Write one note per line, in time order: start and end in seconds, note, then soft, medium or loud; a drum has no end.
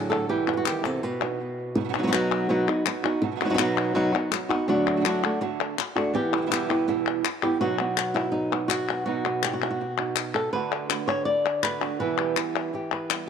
0.00 0.28 A2 medium
0.00 0.28 D3 medium
0.00 0.28 F#3 medium
0.00 0.11 A3 soft
0.00 0.10 D4 soft
0.10 0.30 A3 soft
0.10 0.29 D4 soft
0.10 0.29 F#4 soft
0.10 0.29 A4 medium
0.10 clap soft
0.29 0.65 E2 medium
0.29 0.66 B2 medium
0.29 0.66 E3 medium
0.29 1.03 E3 medium
0.29 0.66 G3 medium
0.29 0.65 B3 medium
0.29 0.64 E4 medium
0.29 0.47 G4 medium
0.48 0.53 F#4 medium
0.48 clap soft
0.53 0.67 F#4 medium
0.53 0.57 G4 medium
0.65 0.84 D#3 medium
0.65 0.82 E3 soft
0.65 0.83 G3 soft
0.65 0.84 B3 soft
0.65 0.84 E4 soft
0.65 0.85 G4 medium
0.65 clap medium
0.84 1.03 C3 medium
0.84 1.02 E3 soft
0.84 1.03 G3 soft
0.84 1.02 B3 soft
0.84 1.03 E4 soft
0.84 1.03 A4 medium
0.84 clap soft
1.03 2.11 B2 medium
1.03 1.77 B4 medium
1.03 muted nylon-string guitar stroke medium
1.20 1.40 B3 soft
1.20 1.38 B3 soft
1.20 1.39 D#4 soft
1.20 1.39 F#4 soft
1.20 clap soft
1.75 1.92 B2 medium
1.75 1.79 F#3 medium
1.75 1.79 B3 medium
1.75 1.80 D#4 medium
1.75 1.80 F#4 medium
1.75 muted nylon-string guitar stroke medium
1.80 1.83 F#3 soft
1.80 1.83 B3 soft
1.80 1.84 D#4 soft
1.80 1.85 F#4 soft
1.84 1.88 F#3 medium
1.84 1.88 B3 medium
1.84 1.88 D#4 medium
1.84 1.89 F#4 medium
1.89 1.92 F#3 medium
1.89 1.93 B3 medium
1.89 1.93 D#4 medium
1.89 1.93 F#4 medium
1.93 2.12 B2 medium
1.93 2.12 F#3 medium
1.93 2.12 B3 medium
1.93 2.12 D#4 medium
1.93 2.10 F#4 medium
1.99 2.02 F#3 medium
1.99 2.02 B3 medium
1.99 2.03 D#4 medium
1.99 2.03 F#4 medium
2.03 2.06 F#3 medium
2.03 2.07 B3 medium
2.03 2.07 D#4 medium
2.03 2.08 F#4 medium
2.07 2.11 F#3 medium
2.07 2.12 B3 medium
2.07 2.12 D#4 medium
2.07 2.12 F#4 medium
2.07 2.48 F#4 soft
2.12 2.48 B2 medium
2.12 2.48 F#3 medium
2.12 2.49 B3 medium
2.12 2.48 B3 soft
2.12 2.49 D#4 medium
2.12 2.49 F#4 medium
2.12 clap medium
2.32 clap soft
2.48 2.67 B2 medium
2.48 2.67 F#3 medium
2.48 2.68 B3 medium
2.48 2.67 D#4 medium
2.48 2.66 F#4 medium
2.48 muted nylon-string guitar stroke medium
2.67 2.85 B3 soft
2.67 2.85 D#4 medium
2.67 2.85 F#4 medium
2.67 clap soft
2.85 3.04 F#3 soft
2.85 3.04 B3 soft
2.85 3.03 D#4 soft
2.85 3.02 F#4 soft
2.85 muted nylon-string guitar stroke medium
2.85 clap medium
3.03 3.21 B3 soft
3.03 3.23 B3 soft
3.03 3.22 D#4 soft
3.03 3.22 D#4 medium
3.03 3.21 F#4 soft
3.03 3.22 F#4 medium
3.03 clap soft
3.22 3.39 B2 medium
3.22 3.30 F#3 medium
3.22 3.31 B3 medium
3.22 3.31 D#4 medium
3.22 3.31 F#4 medium
3.22 muted nylon-string guitar stroke medium
3.31 3.34 F#3 soft
3.31 3.35 B3 soft
3.31 3.36 D#4 soft
3.31 3.36 F#4 soft
3.36 3.40 F#3 medium
3.36 3.40 B3 medium
3.36 3.40 D#4 medium
3.36 3.40 F#4 medium
3.40 3.58 B2 medium
3.40 3.59 F#3 medium
3.40 3.59 B3 medium
3.40 3.58 D#4 medium
3.40 3.57 F#4 medium
3.45 3.48 F#3 medium
3.45 3.49 B3 medium
3.45 3.49 D#4 medium
3.45 3.49 F#4 medium
3.50 3.53 F#3 medium
3.50 3.53 B3 medium
3.50 3.53 D#4 medium
3.50 3.54 F#4 medium
3.54 3.57 F#3 medium
3.54 3.58 B3 medium
3.54 3.58 D#4 medium
3.54 3.58 F#4 medium
3.58 3.93 B2 medium
3.58 3.94 F#3 medium
3.58 3.94 B3 medium
3.58 3.95 B3 soft
3.58 3.94 D#4 loud
3.58 3.95 D#4 soft
3.58 3.95 F#4 soft
3.58 3.95 F#4 loud
3.58 clap medium
3.78 clap soft
3.95 4.13 B2 medium
3.95 4.13 F#3 medium
3.95 4.13 B3 medium
3.95 4.12 D#4 medium
3.95 4.11 F#4 loud
3.95 muted nylon-string guitar stroke medium
4.12 4.31 B3 soft
4.12 4.31 D#4 soft
4.12 4.31 F#4 medium
4.12 clap soft
4.31 4.50 F#3 soft
4.31 4.50 B3 soft
4.31 4.50 D#4 soft
4.31 4.49 F#4 soft
4.31 muted nylon-string guitar stroke medium
4.31 clap medium
4.49 4.68 B3 medium
4.49 4.69 B3 soft
4.49 4.68 D#4 medium
4.49 4.69 D#4 soft
4.49 4.68 F#4 medium
4.49 4.68 F#4 soft
4.49 clap soft
4.68 5.04 D3 medium
4.68 5.03 F#3 medium
4.68 5.04 A3 medium
4.68 5.05 D4 medium
4.68 5.05 F#4 loud
4.68 muted nylon-string guitar stroke medium
4.87 4.96 A3 soft
4.87 4.96 D4 soft
4.87 4.96 F#4 soft
4.96 4.99 D3 soft
4.96 5.00 A3 soft
4.96 5.00 D4 soft
4.96 5.01 F#4 soft
5.00 5.04 D3 medium
5.00 5.05 A3 medium
5.00 5.05 D4 medium
5.00 5.05 F#4 medium
5.05 5.40 D3 medium
5.05 5.23 F#3 medium
5.05 5.23 A3 medium
5.05 5.41 A3 medium
5.05 5.23 D4 medium
5.05 5.41 D4 medium
5.05 5.42 F#4 medium
5.05 5.22 F#4 medium
5.05 clap medium
5.23 5.40 A3 medium
5.23 5.40 D4 medium
5.23 5.41 F#4 medium
5.23 clap soft
5.41 5.77 D3 medium
5.41 5.78 A3 medium
5.41 5.78 D4 medium
5.41 5.78 F#4 medium
5.41 muted nylon-string guitar stroke medium
5.60 clap soft
5.78 muted nylon-string guitar stroke medium
5.78 clap medium
5.96 6.14 A3 medium
5.96 6.15 A3 soft
5.96 6.14 D4 medium
5.96 6.15 D4 soft
5.96 6.14 F#4 medium
5.96 6.14 F#4 soft
6.14 6.49 E3 medium
6.14 6.50 B3 medium
6.14 6.50 E4 medium
6.14 6.51 G4 medium
6.14 muted nylon-string guitar stroke medium
6.32 6.36 E3 soft
6.32 6.37 G3 soft
6.32 6.37 B3 soft
6.32 6.37 E4 soft
6.32 clap soft
6.37 6.40 B2 soft
6.37 6.41 E3 soft
6.37 6.41 G3 soft
6.37 6.41 B3 soft
6.37 6.42 E4 soft
6.42 6.45 B2 soft
6.42 6.45 E3 medium
6.42 6.46 G3 medium
6.42 6.46 B3 medium
6.42 6.46 E4 medium
6.46 6.50 B2 medium
6.46 6.50 E3 medium
6.46 6.50 G3 medium
6.46 6.51 B3 medium
6.46 6.51 E4 medium
6.50 6.86 E2 medium
6.50 6.87 B2 medium
6.50 6.69 E3 medium
6.50 6.87 E3 medium
6.50 6.87 G3 medium
6.50 6.69 B3 medium
6.50 6.88 B3 medium
6.50 6.69 E4 medium
6.50 6.88 E4 medium
6.50 6.68 G4 medium
6.50 clap medium
6.69 6.87 B3 medium
6.69 6.88 E4 medium
6.69 6.87 G4 medium
6.69 clap soft
6.87 7.24 E2 medium
6.87 7.24 B2 medium
6.87 7.24 E3 medium
6.87 7.24 G3 medium
6.87 7.25 B3 medium
6.87 7.25 E4 medium
6.87 muted nylon-string guitar stroke medium
7.06 clap soft
7.25 muted nylon-string guitar stroke soft
7.25 clap medium
7.42 7.60 E3 soft
7.42 7.61 G3 soft
7.42 7.60 B3 soft
7.42 7.61 B3 soft
7.42 7.61 E4 soft
7.42 7.61 E4 medium
7.42 7.60 G4 medium
7.42 clap soft
7.60 7.78 B2 medium
7.60 9.05 B2 medium
7.60 7.79 F#3 medium
7.60 9.48 F#3 soft
7.60 7.79 B3 medium
7.60 7.80 B3 soft
7.60 7.79 D#4 medium
7.60 8.52 F#4 loud
7.60 7.78 F#4 medium
7.79 8.52 B3 soft
7.79 7.96 B3 soft
7.79 7.97 D#4 soft
7.79 7.97 F#4 soft
7.79 clap soft
7.97 8.15 F#3 soft
7.97 8.15 B3 soft
7.97 8.15 D#4 soft
7.97 8.14 F#4 medium
7.97 clap medium
8.14 8.33 B3 soft
8.14 8.33 D#4 soft
8.14 8.31 E4 medium
8.14 8.33 F#4 soft
8.14 clap soft
8.32 9.06 D#4 medium
8.32 muted nylon-string guitar stroke medium
8.52 8.89 B3 soft
8.52 9.07 B3 soft
8.52 9.07 D#4 soft
8.52 9.09 F#4 soft
8.52 clap soft
8.68 9.04 F#4 medium
8.68 clap medium
8.89 9.06 B3 soft
8.89 clap soft
9.06 9.25 B2 medium
9.06 10.52 B2 medium
9.06 9.25 F#3 medium
9.06 9.25 B3 medium
9.06 9.25 D#4 medium
9.06 9.52 F#4 medium
9.06 9.24 F#4 medium
9.25 10.52 B3 soft
9.25 9.43 B3 soft
9.25 9.44 D#4 soft
9.25 9.43 F#4 soft
9.25 clap soft
9.43 9.62 F#3 soft
9.43 9.62 B3 soft
9.43 9.62 D#4 soft
9.43 9.61 F#4 medium
9.43 9.54 G4 medium
9.43 clap medium
9.53 9.69 F#4 medium
9.62 9.80 B3 soft
9.62 9.80 D#4 soft
9.62 9.72 E4 medium
9.62 9.80 F#4 soft
9.62 clap soft
9.71 10.17 F#4 medium
9.81 muted nylon-string guitar stroke medium
9.98 10.54 B3 soft
9.98 10.53 D#4 soft
9.98 10.53 F#4 soft
9.98 clap soft
10.16 clap medium
10.35 10.52 A4 medium
10.35 clap soft
10.53 10.89 D3 medium
10.53 11.98 D3 medium
10.53 10.90 A3 medium
10.53 10.89 D4 medium
10.53 10.88 F#4 medium
10.53 11.07 B4 medium
10.72 clap soft
10.89 11.26 A3 soft
10.89 11.26 D4 soft
10.89 11.26 F#4 soft
10.89 clap medium
11.08 11.25 C#5 loud
11.08 clap soft
11.25 11.62 D5 loud
11.25 muted nylon-string guitar stroke medium
11.46 clap soft
11.62 11.80 D3 soft
11.62 11.81 A3 soft
11.62 11.81 D4 soft
11.62 11.80 F#4 medium
11.62 11.99 B4 medium
11.62 clap medium
11.81 12.00 A3 soft
11.81 12.00 D4 soft
11.81 11.99 F#4 soft
11.81 clap soft
11.99 12.36 E2 medium
11.99 12.36 B2 medium
11.99 13.29 E3 medium
11.99 12.36 E3 medium
11.99 12.36 G3 medium
11.99 12.36 B3 medium
11.99 12.35 E4 medium
11.99 12.91 B4 medium
12.18 12.73 G4 soft
12.18 clap soft
12.36 12.72 E3 soft
12.36 12.73 G3 soft
12.36 12.73 B3 soft
12.36 12.72 E4 soft
12.36 clap medium
12.55 clap soft
12.73 13.26 G4 soft
12.73 muted nylon-string guitar stroke medium
12.92 13.29 B4 soft
12.92 clap soft
13.09 13.27 E3 soft
13.09 13.28 G3 soft
13.09 13.27 B3 soft
13.09 13.26 E4 soft
13.09 clap medium